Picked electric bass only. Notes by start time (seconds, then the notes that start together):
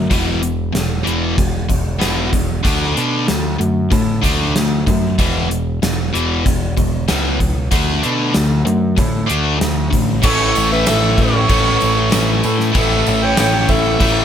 0.11 E1
0.74 E1
1.07 E1
1.39 E1
1.70 E1
2.01 E1
2.65 D2
2.97 B2
3.29 D2
3.60 F#2
3.92 A2
4.24 D2
4.56 D2
4.88 F#2
5.19 E1
5.82 E1
6.15 E1
6.47 E1
6.78 E1
7.11 C#2
7.72 D2
8.05 B2
8.36 D2
8.66 F#2
8.98 A2
9.30 D2
9.61 D2
9.94 A1
10.25 A1
10.57 A1
10.89 A1
11.18 A1
11.50 A1
11.83 A1
12.14 A1
12.45 A2
12.76 A1
13.07 A1
13.39 A1
13.69 A1
14.01 A1